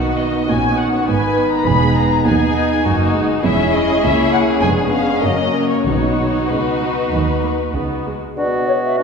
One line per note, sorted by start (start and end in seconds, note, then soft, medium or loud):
0.00 0.44 B1 soft
0.00 0.44 B2 soft
0.00 0.47 D#3 soft
0.00 2.22 B3 soft
0.00 3.41 B3 soft
0.00 0.45 D#4 soft
0.00 3.41 D#4 soft
0.00 0.46 F#4 soft
0.00 0.18 F#5 medium
0.17 0.47 D#5 medium
0.47 1.03 A#1 soft
0.47 1.03 A#2 medium
0.47 1.64 D#3 soft
0.47 1.06 C#4 soft
0.47 1.06 F#4 soft
0.47 0.78 G#5 medium
0.79 1.08 F#5 medium
1.07 1.62 G#1 soft
1.07 1.62 G#2 soft
1.07 1.66 B3 soft
1.07 1.66 B4 soft
1.07 1.51 G#5 medium
1.52 1.66 A#5 medium
1.66 2.22 E1 medium
1.66 2.22 E2 medium
1.66 2.25 G#3 soft
1.66 2.25 B3 soft
1.66 2.25 G#4 soft
1.66 1.96 B5 medium
1.96 2.26 A#5 medium
2.25 2.81 D#2 medium
2.25 2.85 B3 soft
2.25 2.84 D#4 soft
2.25 2.84 G#4 soft
2.25 3.14 G#5 medium
2.55 2.84 D#4 medium
2.85 3.41 F#1 medium
2.85 3.40 F#2 medium
2.85 3.14 A#3 medium
2.85 3.43 D#4 medium
2.85 3.44 F#4 soft
3.15 3.43 G#3 medium
3.44 4.00 E1 medium
3.44 3.99 E2 medium
3.44 4.02 G#3 soft
3.44 4.63 C#4 medium
3.44 3.99 C#4 medium
3.44 3.99 E4 medium
3.44 4.02 E4 medium
3.44 5.20 G#4 medium
3.44 3.72 E5 medium
3.73 4.03 D#5 medium
4.02 4.59 C#2 medium
4.02 4.62 A#3 medium
4.02 4.62 C#4 medium
4.02 4.62 E4 medium
4.02 4.33 E5 medium
4.33 4.41 F#5 medium
4.61 5.20 F1 medium
4.61 5.20 F2 medium
4.61 5.23 G#3 medium
4.61 5.23 B3 medium
4.61 5.86 C#4 medium
4.61 5.23 D4 medium
4.61 4.69 G#5 medium
4.92 5.22 F5 medium
5.22 5.83 F#1 soft
5.22 5.82 F#2 medium
5.22 5.84 F#3 soft
5.22 5.85 A#3 soft
5.22 5.86 A#3 soft
5.22 5.86 C#4 soft
5.22 5.86 A#4 soft
5.22 5.70 D#5 medium
5.69 5.85 C#5 soft
5.85 6.46 B1 soft
5.85 6.77 B2 medium
5.85 6.47 B2 soft
5.85 6.42 F#3 soft
5.85 6.43 B3 soft
5.85 6.48 B3 soft
5.85 8.17 D#4 soft
5.85 6.48 D#4 soft
5.85 8.17 F#4 soft
5.85 6.49 C#5 soft
6.49 7.09 C#2 soft
6.49 7.09 C#3 soft
6.49 6.58 G#3 soft
6.49 8.03 B3 soft
6.49 8.03 D#4 soft
6.49 8.06 B4 soft
6.81 6.89 F#3 soft
7.12 7.71 D#2 soft
7.12 7.72 D#3 soft
7.12 7.20 G#3 soft
7.43 7.51 A#3 soft
7.74 8.34 C#2 soft
7.74 8.34 C#3 soft
7.74 8.06 B3 soft
8.06 8.38 G#3 soft
8.36 9.03 B2 soft
8.36 8.58 B3 soft
8.36 8.95 B3 soft
8.36 8.58 D4 soft
8.36 8.94 F#4 soft
8.36 8.65 D5 soft
8.68 8.74 C#5 soft
8.83 8.98 E5 soft
8.98 9.03 D4 soft
8.98 9.03 F#4 soft
8.98 9.03 D5 soft